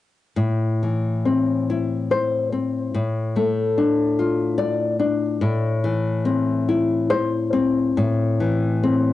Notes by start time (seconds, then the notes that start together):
0.36 A2
0.83 E3
1.25 C4
1.70 E4
2.11 C5
2.52 C4
2.95 A2
3.36 A3
3.78 D4
4.19 F4
4.58 D5
4.99 D4
5.41 A2
5.84 E3
6.25 C4
6.69 E4
7.10 C5
7.53 C4
7.97 A2
8.40 E3
8.83 C4